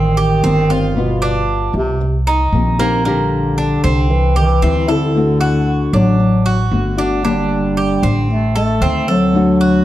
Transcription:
Already playing: upright bass A1, bass clarinet D#3, cuban tres C4, nylon-string guitar G4
0.17 cuban tres G4
0.43 upright bass G1, nylon-string guitar D#3 G3 C4, cuban tres C4
0.69 nylon-string guitar G3 C4, cuban tres F4
0.95 bass clarinet B2, nylon-string guitar G3 B3 F4
1.22 cuban tres D4
1.74 upright bass C2, bass clarinet C3
2.01 muted nylon-string guitar stroke
2.27 cuban tres D#4
2.52 upright bass A#1, nylon-string guitar D#3 A#3 C4 G4
2.79 nylon-string guitar D#3 A#3 C4 G4, cuban tres A#3
3.04 nylon-string guitar D3 G3 D4 G4, bass clarinet D3, cuban tres A#3
3.58 cuban tres D4
3.84 upright bass C2, cuban tres C4
4.10 bass clarinet E3, muted nylon-string guitar stroke
4.36 bass clarinet E3, cuban tres G4
4.62 upright bass D2, nylon-string guitar E3 G3 C4 E4, cuban tres C4
4.88 bass clarinet D3, nylon-string guitar E3 G3 C4 E4, cuban tres A4
5.14 nylon-string guitar D3 A3 D4 F#4
5.41 cuban tres F#4
5.93 upright bass A1, bass clarinet F#3, cuban tres D4
6.19 muted nylon-string guitar stroke
6.46 cuban tres F#4
6.71 upright bass G1, nylon-string guitar D3 A3 D4 F#4
6.97 nylon-string guitar A3 D4 F#4, cuban tres D4
7.23 nylon-string guitar D3 G3 A#3 D4 G4, bass clarinet G3, cuban tres D4
7.77 cuban tres G4
8.03 upright bass A1, cuban tres C4
8.30 bass clarinet A3, muted nylon-string guitar stroke
8.55 bass clarinet A3, cuban tres A4
8.81 upright bass D2, nylon-string guitar D#3 A3 C4, cuban tres C4
9.07 bass clarinet F#3, nylon-string guitar A3 C4, cuban tres A4
9.33 nylon-string guitar D3 A3 D4 F#4
9.61 cuban tres F#4

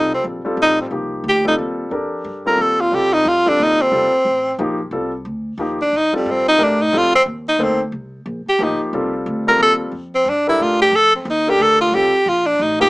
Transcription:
Already playing: upright bass C2, grand piano G3 C4 F4 A4, tenor saxophone D#4
0.14 tenor saxophone C4
0.24 upright bass A#1
0.45 grand piano G3 C4 F4 A4, muted upright bass stroke
0.57 upright bass A1
0.62 tenor saxophone D#4
0.81 tenor saxophone C4
0.91 upright bass C2, grand piano F3 A#3 D#4 G4
1.24 upright bass D2
1.29 tenor saxophone G4
1.45 grand piano G3 C4 F4 A4, tenor saxophone D#4
1.58 upright bass D#2
1.91 upright bass F2, grand piano D4 G4 A4 A#4
2.24 upright bass G2
2.46 grand piano G3 C4 F4 A4, tenor saxophone A#4
2.58 upright bass D#2, tenor saxophone A4
2.81 tenor saxophone F4
2.91 upright bass C2, grand piano G3 C4 F4 A4, tenor saxophone G4
3.13 tenor saxophone D#4
3.25 upright bass F2, tenor saxophone F4
3.46 grand piano G3 C4 F4 A4, tenor saxophone D4
3.59 upright bass D#2
3.63 tenor saxophone D#4
3.81 tenor saxophone C4
3.92 upright bass C2, grand piano G3 C4 F4 A4
4.12 muted upright bass stroke
4.25 upright bass A1
4.59 upright bass A#1, grand piano F3 A#3 D#4 G4
4.91 upright bass C2, grand piano G3 C4 F4 A4
5.25 upright bass D2
5.58 upright bass D#2, grand piano F3 A#3 D#4 G4
5.82 tenor saxophone D4
5.92 upright bass F2
5.97 tenor saxophone D#4
6.13 grand piano G3 C4 F4 A4, tenor saxophone G3
6.26 upright bass G2
6.31 tenor saxophone C4
6.48 tenor saxophone D#4
6.58 upright bass A2, grand piano A3 D4 G4 A#4
6.64 tenor saxophone D4
6.82 tenor saxophone D#4
6.92 upright bass F2, grand piano G3 C4 F4 A4
6.97 tenor saxophone F4
7.16 tenor saxophone C4
7.26 upright bass D#2
7.49 tenor saxophone D#4
7.59 upright bass D2, grand piano A#3 D#4 A4 C5
7.63 tenor saxophone C4
7.92 upright bass C2
8.26 upright bass A#1
8.47 tenor saxophone G4, muted upright bass stroke
8.59 upright bass A1, grand piano F3 A#3 D#4 G4
8.64 tenor saxophone D#4
8.80 muted upright bass stroke
8.93 upright bass C2, grand piano G3 C4 F4 A4
9.26 upright bass D2
9.47 grand piano G3 C4 F4 A4, tenor saxophone A#4
9.59 upright bass D#2, tenor saxophone A4
9.92 upright bass F2
10.15 tenor saxophone C4
10.25 upright bass G2
10.29 tenor saxophone D4
10.47 grand piano D4 G4 A4 A#4, tenor saxophone E4
10.60 upright bass A2, tenor saxophone F4
10.82 tenor saxophone G4
10.92 upright bass F2, tenor saxophone A4
11.16 tenor saxophone C4
11.25 upright bass D#2
11.30 tenor saxophone D#4
11.47 grand piano D4 G4 A4 A#4, tenor saxophone G4
11.58 upright bass D2, tenor saxophone A4
11.81 tenor saxophone F4
11.92 upright bass C2, grand piano G3 C4 F4 A4, tenor saxophone G4
12.14 muted upright bass stroke
12.26 upright bass A#1, tenor saxophone F4
12.46 tenor saxophone D4
12.59 upright bass A1, tenor saxophone D#4
12.80 grand piano F3 A#3 D#4 G4, tenor saxophone G4

